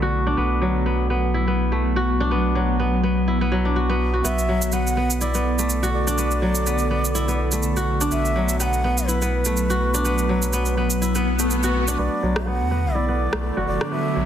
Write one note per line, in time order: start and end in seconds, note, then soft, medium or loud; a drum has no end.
0.00 0.35 B1 medium
0.00 0.33 D3 medium
0.00 0.42 F#3 medium
0.00 1.72 A3 medium
0.00 0.37 B3 medium
0.00 8.07 B3 medium
0.00 0.97 E4 medium
0.00 1.48 F#4 medium
0.00 0.33 A4 medium
0.00 0.13 D5 medium
0.27 1.95 D4 loud
0.37 4.22 B1 medium
0.37 4.20 F#3 medium
0.37 0.86 B3 medium
0.62 2.54 F#3 medium
0.86 1.10 B3 medium
1.10 1.47 B3 medium
1.34 2.91 E4 medium
1.48 2.31 B3 medium
1.72 3.72 A3 medium
1.96 3.42 F#4 loud
2.20 3.65 D4 loud
2.31 2.79 B3 medium
2.55 3.50 F#3 medium
2.80 3.03 B3 medium
3.04 3.41 B3 medium
3.28 4.84 E4 medium
3.41 3.89 B3 medium
3.52 4.29 F#3 medium
3.65 5.33 D4 medium
3.76 4.13 F#4 medium
3.89 4.24 B3 medium
4.14 5.60 F#4 medium
4.24 8.09 B1 medium
4.24 8.08 D3 medium
4.24 4.72 B3 medium
4.24 8.08 A4 medium
4.24 4.74 E5 loud
4.24 cabasa medium
4.38 cabasa soft
4.49 6.41 F#3 medium
4.62 cabasa medium
4.72 4.96 B3 medium
4.72 5.20 F#5 loud
4.72 cabasa medium
4.87 cabasa soft
4.97 5.34 B3 medium
5.10 cabasa medium
5.21 6.78 E4 medium
5.21 5.90 D5 medium
5.21 cabasa medium
5.34 6.17 B3 medium
5.34 cabasa soft
5.59 7.52 A3 medium
5.59 cabasa medium
5.69 cabasa medium
5.83 7.29 F#4 loud
5.83 cabasa soft
5.94 7.83 D5 medium
6.07 7.75 D4 loud
6.07 cabasa medium
6.18 6.66 B3 medium
6.18 cabasa medium
6.31 cabasa soft
6.42 8.16 F#3 medium
6.55 cabasa medium
6.66 6.90 B3 medium
6.66 cabasa medium
6.78 cabasa soft
6.91 7.28 B3 medium
7.05 cabasa medium
7.15 8.71 E4 medium
7.15 cabasa medium
7.28 8.11 B3 medium
7.28 cabasa soft
7.52 9.46 A3 medium
7.52 cabasa medium
7.63 cabasa medium
7.77 9.23 F#4 loud
7.77 cabasa soft
8.01 9.69 D4 loud
8.01 cabasa medium
8.11 11.97 B1 medium
8.11 11.95 F#3 medium
8.11 8.60 B3 medium
8.11 11.95 B3 medium
8.11 8.56 E5 loud
8.11 cabasa medium
8.25 cabasa soft
8.36 10.28 F#3 medium
8.49 cabasa medium
8.60 8.84 B3 medium
8.60 9.09 F#5 loud
8.60 8.64 G5 loud
8.60 cabasa medium
8.73 cabasa soft
8.84 9.21 B3 medium
8.98 cabasa medium
9.08 10.65 E4 medium
9.08 11.50 B4 medium
9.08 cabasa medium
9.22 10.05 B3 medium
9.22 cabasa soft
9.45 11.39 A3 medium
9.45 cabasa medium
9.57 cabasa medium
9.70 11.16 F#4 loud
9.70 cabasa soft
9.94 11.62 D4 loud
9.94 cabasa medium
10.05 10.53 B3 medium
10.05 cabasa medium
10.18 cabasa soft
10.29 12.04 F#3 medium
10.42 cabasa medium
10.53 10.77 B3 medium
10.53 cabasa medium
10.65 cabasa soft
10.77 11.15 B3 medium
10.90 cabasa medium
11.02 12.58 E4 medium
11.02 swell medium
11.02 cabasa medium
11.15 11.98 B3 medium
11.15 cabasa soft
11.39 13.32 A3 medium
11.39 cabasa medium
11.50 cabasa medium
11.63 13.10 F#4 loud
11.63 cabasa soft
11.88 13.56 D4 loud
11.88 cabasa medium
11.98 12.09 B1 loud
11.98 14.25 D3 medium
11.98 14.25 B3 medium
11.98 12.46 B3 medium
11.98 13.90 A4 medium
11.98 12.48 D5 medium
11.98 riser medium
12.23 12.62 B1 medium
12.23 14.15 F#3 medium
12.36 cross-stick medium
12.47 12.71 B3 medium
12.47 12.96 F#5 medium
12.60 12.86 E2 medium
12.71 13.08 B3 medium
12.85 13.28 B1 medium
12.95 14.25 E4 medium
12.95 13.67 D5 medium
13.09 13.91 B3 medium
13.33 13.51 B1 medium
13.33 14.25 A3 medium
13.33 cross-stick medium
13.57 13.65 F#1 medium
13.57 14.25 F#4 loud
13.67 13.78 F#1 medium
13.67 13.90 D5 medium
13.81 14.25 D4 loud
13.81 cross-stick medium
13.92 14.25 B3 medium
13.92 14.25 B4 medium
13.92 14.25 E5 medium
14.16 14.25 B1 medium
14.16 14.25 F#3 medium